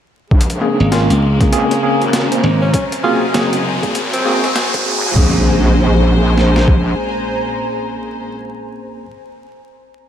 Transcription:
0.31 wobble bass A#1, string section C#3 G#3 A#3, ambient pad C#4, kick, riser
0.41 closed hi-hat
0.50 ambient pad C5, closed hi-hat
0.61 tine electric piano A#3 C4 C#4 G#4
0.80 slap bass G#1
0.92 tine electric piano A#3 C4 C#4 F4, snare, closed hi-hat
0.99 ambient pad A#5
1.10 slap bass C#2, closed hi-hat
1.26 ambient pad G#5
1.41 tine electric piano A#3 C4 C#4 G#4, kick, snare, closed hi-hat
1.52 wobble bass C#2, tine electric piano A#3 C4 C#4 G#4, closed hi-hat
1.71 snare, closed hi-hat
1.83 tine electric piano A#3 C4 C#4 G#4
2.01 wobble bass G#1, closed hi-hat
2.13 snare, closed hi-hat
2.32 tine electric piano A#3 C4 C#4 C5, closed hi-hat
2.43 slap bass G#1
2.61 tenor saxophone C#4
2.73 string section C3 F#3 G#3, tenor saxophone C#4, ambient pad F#4, kick, closed hi-hat
2.92 closed hi-hat
3.03 tine electric piano A#3 C4 F#4 G#4, tenor saxophone F4
3.34 slap bass F#1, tine electric piano A#3 C4 F#4 G#4, snare, closed hi-hat
3.53 closed hi-hat
3.83 wobble bass G#1, tine electric piano A#3 C4 F#4 G#4, kick, closed hi-hat
3.95 closed hi-hat
4.13 tenor saxophone C4, closed hi-hat
4.25 tine electric piano A#3 C4 F#4 G#4
4.44 snare, closed hi-hat
4.56 snare, closed hi-hat
4.74 wobble bass G#1, kick, closed hi-hat
4.86 tine electric piano A#3 C4 F#4 G#4
5.04 wobble bass D#2
5.16 wobble bass A#1, string section A#2 G#3 C5, tine electric piano A#3 C4 C#4 G#4, kick, crash, impact
5.28 ambient pad C5
5.37 ambient pad G#5
5.45 ambient pad A#5
6.38 snare
6.56 snare
6.68 kick

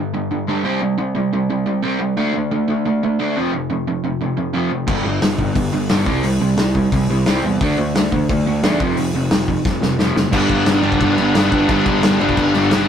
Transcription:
Already playing: overdriven electric guitar G2 D3
0.14 overdriven electric guitar G2 D3
0.31 overdriven electric guitar G2 D3
0.47 overdriven electric guitar G2 D3 G3
0.64 overdriven electric guitar C3 G3 C4
0.81 overdriven electric guitar C3 G3
0.98 overdriven electric guitar C3 G3
1.15 overdriven electric guitar C3 G3
1.33 overdriven electric guitar C3 G3
1.50 overdriven electric guitar C3 G3
1.67 overdriven electric guitar C3 G3
1.84 overdriven electric guitar C3 G3 C4
2.00 overdriven electric guitar C3 G3
2.17 overdriven electric guitar D3 A3 D4
2.36 overdriven electric guitar D3 A3
2.51 overdriven electric guitar D3 A3
2.70 overdriven electric guitar D3 A3
2.86 overdriven electric guitar D3 A3
3.03 overdriven electric guitar D3 A3
3.19 overdriven electric guitar D3 A3 D4
3.37 overdriven electric guitar F2 C3 F3
3.53 overdriven electric guitar F2 C3
3.70 overdriven electric guitar F2 C3
3.88 overdriven electric guitar F2 C3
4.05 overdriven electric guitar F2 C3
4.22 overdriven electric guitar F2 C3
4.38 overdriven electric guitar F2 C3
4.54 overdriven electric guitar F2 C3 F3
4.72 overdriven electric guitar F2 C3
4.87 picked electric bass G1, overdriven electric guitar G2 D3 G3, kick, crash
5.05 picked electric bass G1, overdriven electric guitar G2 D3
5.22 picked electric bass G1, overdriven electric guitar G2 D3, snare, open hi-hat
5.38 picked electric bass G1, overdriven electric guitar G2 D3, kick
5.55 picked electric bass G1, overdriven electric guitar G2 D3, kick, open hi-hat
5.73 picked electric bass G1, overdriven electric guitar G2 D3
5.89 picked electric bass G1, overdriven electric guitar G2 D3 G3, snare, open hi-hat
6.06 picked electric bass C2, overdriven electric guitar C3 G3 C4, kick
6.23 picked electric bass C2, overdriven electric guitar C3 G3, open hi-hat
6.40 picked electric bass C2, overdriven electric guitar C3 G3
6.57 picked electric bass C2, overdriven electric guitar C3 G3, snare, open hi-hat
6.75 overdriven electric guitar C3 G3, kick
6.92 picked electric bass C2, overdriven electric guitar C3 G3, kick, open hi-hat
7.09 picked electric bass C2, overdriven electric guitar C3 G3
7.26 picked electric bass C2, overdriven electric guitar C3 G3 C4, snare, open hi-hat
7.43 picked electric bass E2, overdriven electric guitar C3 G3
7.61 picked electric bass D2, overdriven electric guitar D3 A3 D4, kick, open hi-hat
7.78 picked electric bass D2, overdriven electric guitar D3 A3
7.95 picked electric bass D2, overdriven electric guitar D3 A3, snare, open hi-hat
8.11 picked electric bass D2, overdriven electric guitar D3 A3, kick
8.29 picked electric bass D2, overdriven electric guitar D3 A3, kick, open hi-hat
8.46 picked electric bass D2, overdriven electric guitar D3 A3
8.63 picked electric bass E2, overdriven electric guitar D3 A3 D4, snare, open hi-hat
8.80 picked electric bass F1, overdriven electric guitar F2 C3 F3, kick
8.97 picked electric bass F1, overdriven electric guitar F2 C3, open hi-hat
9.13 picked electric bass F1, overdriven electric guitar F2 C3
9.31 picked electric bass F1, overdriven electric guitar F2 C3, snare, open hi-hat
9.48 overdriven electric guitar F2 C3, kick
9.65 picked electric bass F1, overdriven electric guitar F2 C3, kick, snare
9.82 picked electric bass F1, overdriven electric guitar F2 C3, snare
9.99 picked electric bass F1, overdriven electric guitar F2 C3 F3, snare
10.15 picked electric bass F#1, overdriven electric guitar F2 C3, snare
10.32 picked electric bass G1, distorted electric guitar G2 D3 G3 B3 D4, overdriven electric guitar G2 D3 G3, kick, crash
10.49 picked electric bass G1, kick, crash
10.66 picked electric bass G1, snare, crash
10.82 picked electric bass G1, overdriven electric guitar G2 D3 G3, distorted electric guitar G2 D3 G3 B3 D4, crash
10.92 kick
11.00 picked electric bass G1, kick, crash
11.18 picked electric bass G1, overdriven electric guitar G2 D3 G3, crash
11.34 picked electric bass G1, distorted electric guitar G2 D3 G3 B3 D4, overdriven electric guitar G2 D3 G3, snare, crash
11.52 picked electric bass G1, kick, crash
11.68 picked electric bass G1, distorted electric guitar G2 D3 G3 B3 D4, overdriven electric guitar G2 D3, kick, crash
11.72 overdriven electric guitar G3
11.86 picked electric bass G1, kick, crash
12.03 picked electric bass G1, snare, crash
12.20 picked electric bass G1, overdriven electric guitar G2 D3 G3, distorted electric guitar G2 D3 G3 B3 D4, crash
12.29 kick
12.37 picked electric bass G1, kick, crash
12.54 picked electric bass G1, overdriven electric guitar G2 D3 G3, crash
12.71 picked electric bass G1, overdriven electric guitar G2 D3 G3, distorted electric guitar G2 D3 G3 B3, snare, crash
12.75 distorted electric guitar D4

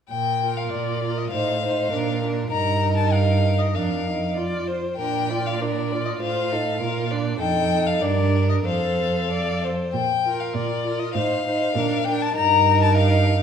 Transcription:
0.10 cello A#2, violin G5
0.43 viola F4, violin A#4
0.57 violin F5
0.72 cello A#2, violin D5
1.03 viola F4, violin A#4
1.18 violin D#5
1.31 cello A2, viola D#4, violin C5 F5
1.62 viola D#4, violin C5
1.92 cello A#2, viola D4, violin A#4
2.22 viola D4, violin A#4
2.52 cello G2, viola D#4, violin A#4 A#5
2.97 violin A5
3.13 violin F5
3.59 violin D#5
3.74 cello F2, viola D4, violin A#4 F5
4.06 viola D#4
4.36 viola F4, violin D5
4.67 violin C5
4.97 cello A#2, viola D4, violin A#4 G5
5.30 viola F4, violin D5
5.46 violin F5
5.59 viola D4, violin A#4 D5
5.92 viola F4, violin D5
6.05 violin D#5
6.20 cello A2, viola F4, violin C5 F5
6.52 viola D#4, violin A4
6.80 cello A#2, viola F4, violin A#4
7.11 viola D4, violin D5
7.40 cello F2, viola D#4, violin A4 G5
7.87 violin F5
8.01 cello G2, viola D4, violin A#4 D5
8.49 violin D#5
8.65 cello F2, viola A4, violin C5 F5
9.30 violin D5
9.64 violin C5
9.93 cello A#2, violin G5
10.26 viola F4, violin A#4
10.40 violin F5
10.54 cello A#2, violin D5
10.86 viola F4, violin A#4
10.99 violin D#5
11.15 cello A2, viola D#4, violin C5 F5
11.47 viola D#4, violin C5
11.75 cello A#2, viola D4, violin A#4
12.05 viola D4, violin A#4 G5
12.22 violin A5
12.36 cello G2, viola D#4, violin A#4 A#5
12.82 violin A5
12.97 violin F5

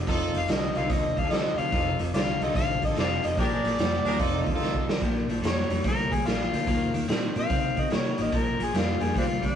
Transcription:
0.06 fingered electric bass F1, clean electric guitar F2 C3, horn section D#4 F4 A4, kick, closed hi-hat
0.34 fingered electric bass F1, clean electric guitar F2 C3, harmonica F5, closed hi-hat
0.48 fingered electric bass C2, clean electric guitar F2 D3, harmonica D#5, snare, closed hi-hat
0.75 fingered electric bass C2, clean electric guitar F2 D3, horn section D#4 F4 A4, harmonica F5, closed hi-hat
0.90 fingered electric bass D#2, clean electric guitar F2 D3, harmonica D#5, kick, closed hi-hat
1.16 fingered electric bass D#2, clean electric guitar F2 D3, harmonica F5, kick, closed hi-hat
1.24 horn section D#4 F4 A4
1.29 fingered electric bass D2, clean electric guitar F2 C3, harmonica D#5, snare, closed hi-hat
1.57 fingered electric bass D2, clean electric guitar F2 C3, harmonica F5, closed hi-hat
1.72 fingered electric bass F1, clean electric guitar F2 C3, horn section D#4 F4 A4, kick, closed hi-hat
1.99 fingered electric bass F1, clean electric guitar F2 C3, closed hi-hat
2.13 fingered electric bass C2, clean electric guitar F2 D3, harmonica C5 D5 F5, snare, closed hi-hat
2.39 fingered electric bass C2, clean electric guitar F2 D3, horn section D#4 F4 A4, harmonica D#5, closed hi-hat
2.55 fingered electric bass A1, clean electric guitar F2 D3, harmonica F5, kick, snare, closed hi-hat
2.82 fingered electric bass A1, clean electric guitar F2 D3, harmonica D#5, kick, closed hi-hat
2.88 horn section D#4 F4 A4
2.96 fingered electric bass F1, clean electric guitar F2 C3, harmonica C5 D5 F5, snare, closed hi-hat
3.24 fingered electric bass F1, clean electric guitar F2 C3, harmonica D#5, closed hi-hat
3.37 fingered electric bass A#1, clean electric guitar A#2 F3, horn section D4 G#4 A#4, harmonica G4 A#4 D5, kick, snare, closed hi-hat
3.64 fingered electric bass A#1, clean electric guitar A#2 F3, snare, closed hi-hat
3.78 fingered electric bass F2, clean electric guitar A#2 G3, snare, closed hi-hat
4.04 fingered electric bass D#2, clean electric guitar A#2 G3, horn section D4 G#4 A#4, closed hi-hat
4.19 fingered electric bass F1, clean electric guitar F2 C3, horn section D#4 F4 A4, kick, closed hi-hat
4.46 fingered electric bass D#2, clean electric guitar F2 D3, kick, closed hi-hat
4.53 horn section D#4 F4 A4
4.60 fingered electric bass D2, clean electric guitar F2 C3, snare
4.74 kick
4.86 fingered electric bass D2, clean electric guitar F2 C3, snare
5.01 fingered electric bass A#1, clean electric guitar A#2 F3, kick, closed hi-hat
5.27 fingered electric bass A#1, clean electric guitar A#2 F3, closed hi-hat
5.41 fingered electric bass F2, clean electric guitar A#2 G3, closed hi-hat
5.45 harmonica C#5, snare
5.69 fingered electric bass F2, clean electric guitar A#2 G3, closed hi-hat
5.83 fingered electric bass D2, clean electric guitar A#2 G3, kick, snare, closed hi-hat
5.88 harmonica A#4
6.11 fingered electric bass D2, clean electric guitar A#2 G3, harmonica G#4, kick, closed hi-hat
6.25 fingered electric bass A#1, clean electric guitar A#2 F3, harmonica F4, snare, closed hi-hat
6.53 fingered electric bass D2, clean electric guitar A#2 F3, closed hi-hat
6.67 fingered electric bass D#2, clean electric guitar D#3 A#3, kick, snare, closed hi-hat
6.93 fingered electric bass D#2, clean electric guitar D#3 A#3, closed hi-hat
7.08 fingered electric bass A#2, clean electric guitar D#3 C4, snare, closed hi-hat
7.35 fingered electric bass A#2, clean electric guitar D#3 C4, harmonica F5, closed hi-hat
7.49 fingered electric bass C#3, clean electric guitar D#3 C4, kick, closed hi-hat
7.77 fingered electric bass C#3, clean electric guitar D#3 C4, harmonica D#5, kick, closed hi-hat
7.90 fingered electric bass C3, clean electric guitar D#3 A#3, snare, closed hi-hat
7.95 harmonica C#5
8.18 fingered electric bass A1, clean electric guitar D#3 A#3, closed hi-hat
8.22 harmonica D#5
8.32 fingered electric bass A#1, clean electric guitar A#2 F3, kick, closed hi-hat
8.37 harmonica A#4
8.59 fingered electric bass A#1, clean electric guitar A#2 F3, closed hi-hat
8.63 harmonica G#4
8.73 fingered electric bass F2, clean electric guitar A#2 G3, snare, closed hi-hat
8.78 harmonica F4
9.00 fingered electric bass F2, clean electric guitar A#2 G3, harmonica G#4, closed hi-hat
9.14 fingered electric bass D2, clean electric guitar A#2 G3, harmonica C4 D4 F4, kick, closed hi-hat
9.41 fingered electric bass D2, clean electric guitar A#2 G3, kick, closed hi-hat
9.45 harmonica D4

